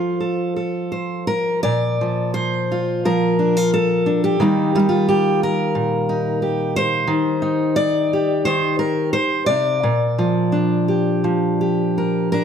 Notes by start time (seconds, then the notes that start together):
Already playing: F3 F4 A4 C5
0.20 A4
0.56 A4
0.92 C5
1.27 A#4
1.63 A#2 D5
2.01 F3
2.34 C5
2.72 F4
3.05 F3 A#4
3.39 D4
3.57 F4
3.74 A4
4.06 D4
4.24 G4
4.40 D#3 G3 A#3 D#4
4.75 G3 F4
4.79 D#4
4.89 F4
5.09 G4
5.43 A#4
5.75 A#2
6.09 D#4
6.42 G4
6.76 C5
7.07 D#3
7.42 D#4
7.76 D5
8.13 G4
8.45 D#3 C5
8.79 A#4
9.13 C5
9.46 C3 D5
9.83 A#2
10.18 F3
10.52 D4
10.88 G4
11.24 F3
11.61 G4
11.98 A#4
12.32 D4 A#4